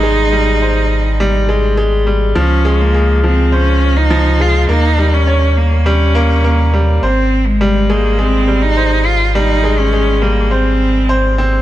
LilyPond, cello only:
\new Staff \with { instrumentName = "Cello" } { \time 4/4 \key aes \major \tempo 4 = 103 ees'2. r4 | des'8. bes8. c'8 des'8. ees'8. f'8 | ees'8. des'8. bes8 des'4. r8 | c'8. aes8. bes8 c'8. ees'8. f'8 |
ees'8. des'8. bes8 c'4. r8 | }